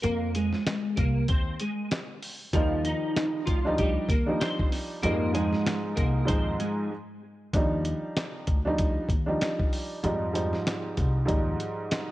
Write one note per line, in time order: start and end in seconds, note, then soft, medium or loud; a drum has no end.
0.02 0.52 F2 loud
0.02 0.31 A#3 medium
0.02 0.31 A#4 loud
0.02 closed hi-hat loud
0.35 0.94 G#3 medium
0.35 0.93 G#4 medium
0.35 closed hi-hat medium
0.53 snare soft
0.67 snare loud
0.67 snare medium
0.67 closed hi-hat medium
0.96 1.22 C2 loud
0.96 1.25 A#3 medium
0.96 1.25 A#4 medium
0.96 kick loud
0.96 closed hi-hat medium
1.28 1.53 D#2 medium
1.28 1.57 C4 medium
1.28 1.56 C5 medium
1.28 kick loud
1.28 closed hi-hat loud
1.59 1.88 G#3 medium
1.59 1.88 G#4 medium
1.59 closed hi-hat medium
1.91 snare loud
1.91 snare medium
1.91 closed hi-hat loud
2.22 open hi-hat medium
2.53 2.91 D#2 loud
2.53 3.55 D#3 medium
2.53 2.82 F3 medium
2.53 3.56 F3 medium
2.53 3.56 G3 medium
2.53 3.56 D#4 loud
2.53 2.81 F4 loud
2.53 kick loud
2.53 closed hi-hat loud
2.85 3.43 D#4 medium
2.85 3.44 D#5 medium
2.85 closed hi-hat medium
3.17 snare loud
3.17 snare medium
3.17 closed hi-hat medium
3.46 3.96 D2 medium
3.46 3.75 F3 medium
3.46 3.74 F4 medium
3.46 kick loud
3.46 closed hi-hat medium
3.65 4.07 F3 medium
3.65 4.07 G3 medium
3.65 4.06 D4 medium
3.65 4.07 D#4 loud
3.78 4.07 G3 medium
3.78 4.07 G4 medium
3.78 kick loud
3.78 closed hi-hat loud
4.09 4.33 D#2 medium
4.09 4.38 A#3 medium
4.09 4.37 A#4 medium
4.09 kick medium
4.09 closed hi-hat medium
4.26 4.98 F3 medium
4.26 4.98 G3 medium
4.26 4.97 D4 medium
4.26 4.99 D#4 loud
4.40 4.69 C4 medium
4.40 4.69 C5 medium
4.40 snare loud
4.40 snare medium
4.40 closed hi-hat loud
4.59 kick loud
4.72 open hi-hat soft
5.03 5.52 F2 loud
5.03 5.32 G#2 loud
5.03 5.32 F3 medium
5.03 5.33 G3 medium
5.03 5.31 A#3 medium
5.03 5.33 D#4 loud
5.03 5.31 A#4 loud
5.03 closed hi-hat loud
5.33 6.21 G#2 medium
5.33 6.21 F3 medium
5.33 6.22 G#3 medium
5.33 5.93 G#3 medium
5.33 6.22 D#4 loud
5.33 5.93 G#4 medium
5.33 closed hi-hat medium
5.53 snare soft
5.66 snare loud
5.66 snare medium
5.66 closed hi-hat medium
5.96 6.22 C2 medium
5.96 6.25 A#3 medium
5.96 6.24 A#4 medium
5.96 kick loud
5.96 closed hi-hat medium
6.25 6.89 G#2 loud
6.25 6.89 F3 medium
6.25 6.90 G#3 medium
6.25 6.56 C4 medium
6.25 6.90 D#4 loud
6.25 6.56 C5 medium
6.25 kick loud
6.25 closed hi-hat loud
6.29 6.53 D#2 medium
6.60 6.88 G#3 medium
6.60 6.88 G#4 medium
6.60 closed hi-hat medium
7.53 7.91 D#2 loud
7.53 8.55 F3 medium
7.53 8.56 G3 medium
7.53 8.55 D4 medium
7.53 8.56 D#4 loud
7.53 kick loud
7.53 closed hi-hat loud
7.85 closed hi-hat medium
8.17 snare loud
8.17 snare medium
8.17 closed hi-hat medium
8.47 8.96 D2 medium
8.47 kick medium
8.47 closed hi-hat medium
8.65 9.07 F3 medium
8.65 9.07 G3 medium
8.65 9.06 D4 medium
8.65 9.08 D#4 loud
8.78 kick loud
8.78 closed hi-hat loud
9.09 9.33 D#2 medium
9.09 kick medium
9.09 closed hi-hat medium
9.26 9.98 F3 medium
9.26 9.98 G3 medium
9.26 9.97 D4 medium
9.26 9.98 D#4 loud
9.41 snare loud
9.41 snare medium
9.41 closed hi-hat medium
9.60 kick medium
9.73 open hi-hat medium
10.03 10.52 F2 loud
10.03 10.31 G#2 loud
10.03 10.32 F3 medium
10.03 10.33 G3 medium
10.03 10.33 D#4 loud
10.03 closed hi-hat loud
10.33 11.21 G#2 medium
10.33 11.21 F3 medium
10.33 11.22 G3 medium
10.33 11.22 D#4 loud
10.33 closed hi-hat medium
10.53 snare soft
10.67 snare loud
10.67 snare medium
10.67 closed hi-hat medium
10.97 11.22 C2 medium
10.97 kick medium
10.97 closed hi-hat medium
11.25 12.12 G#2 loud
11.25 12.12 F3 medium
11.25 12.12 G3 medium
11.25 12.12 D#4 loud
11.25 kick loud
11.25 closed hi-hat loud
11.29 11.53 D#2 medium
11.60 closed hi-hat medium
11.91 snare loud
11.91 snare medium
11.91 closed hi-hat loud